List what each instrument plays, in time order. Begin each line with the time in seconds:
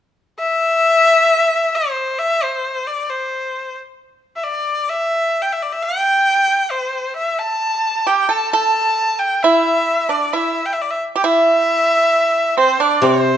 0.39 erhu E5
1.74 erhu C5
2.19 erhu E5
2.43 erhu C5
2.87 erhu D5
3.10 erhu C5
4.36 erhu E5
4.44 erhu D5
4.89 erhu E5
5.42 erhu G5
5.52 erhu E5
5.62 erhu D5
5.72 erhu E5
5.83 erhu G5
6.71 erhu C5
7.16 erhu E5
7.38 erhu A5
8.07 pipa G4, erhu G5
8.29 pipa A4, erhu A5
8.52 pipa A4, erhu A5
9.19 erhu G5
9.43 pipa E4, erhu E5
10.09 pipa D4, erhu D5
10.33 pipa E4, erhu E5
10.65 erhu G5
10.73 erhu E5
10.81 erhu D5
10.90 erhu E5
11.16 pipa G4, erhu G5
11.24 pipa E4, erhu E5
12.58 pipa C4, erhu C5
12.80 pipa D4, erhu D5
13.02 guzheng C3, pipa C4, erhu C5